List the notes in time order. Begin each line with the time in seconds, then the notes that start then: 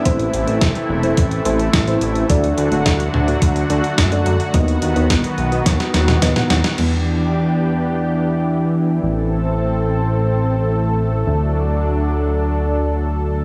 Already playing: E4
0.05 A1 C3 E3 A3 C4 E4 A4 C5, kick, closed hi-hat
0.19 closed hi-hat
0.34 A1, closed hi-hat
0.47 A1 A3 C4 E4 A4 C5, closed hi-hat
0.61 E1, kick, snare, closed hi-hat
0.75 closed hi-hat
0.90 E1
1.03 A3 C4 E4 A4 C5, closed hi-hat
1.17 A1, kick, closed hi-hat
1.31 closed hi-hat
1.45 A1 A3 C4 E4 A4 C5, closed hi-hat
1.59 closed hi-hat
1.73 A1, kick, snare, closed hi-hat
1.88 A3 C4 E4 A4 C5, closed hi-hat
2.01 A1, closed hi-hat
2.15 closed hi-hat
2.30 D2 D3 F#3 A3 D4 F#4 A4 D5, kick, closed hi-hat
2.44 closed hi-hat
2.58 D2, closed hi-hat
2.72 D1 A3 D4 F#4 A4 D5, closed hi-hat
2.86 D2, kick, snare, closed hi-hat
3.00 closed hi-hat
3.14 D2, mid tom
3.28 A3 D4 F#4 A4 D5, closed hi-hat
3.42 D2, kick, closed hi-hat
3.56 closed hi-hat
3.70 D2 A3 D4 F#4 A4 D5, closed hi-hat
3.84 closed hi-hat
3.98 F#2, kick, snare, closed hi-hat
4.12 A3 D4 F#4 A4 D5, closed hi-hat
4.26 F#2, closed hi-hat
4.40 closed hi-hat
4.54 D#2 D#3 B3 D#4 F#4 B4 D#5, kick, closed hi-hat
4.68 closed hi-hat
4.82 D#2, closed hi-hat
4.96 D#2 B3 D#4 F#4 B4 D#5, closed hi-hat
5.10 B1, kick, snare, closed hi-hat
5.24 closed hi-hat
5.38 B1, closed hi-hat
5.52 B3 D#4 F#4 B4 D#5, closed hi-hat
5.66 D#2, kick, snare, closed hi-hat
5.80 snare, closed hi-hat
5.94 D#2, snare, closed hi-hat
6.08 snare, closed hi-hat, mid tom
6.22 D#2 B3 D#4 F#4 B4 D#5, kick, snare, closed hi-hat
6.36 B3 D#4 F#4 B4 F#5, snare, closed hi-hat, mid tom
6.50 D#2, snare, closed hi-hat
6.64 snare, closed hi-hat
6.78 E2 E3 B3 D4 G4, crash
9.03 A1 A3 C4 A4
11.27 D2 F#3 D4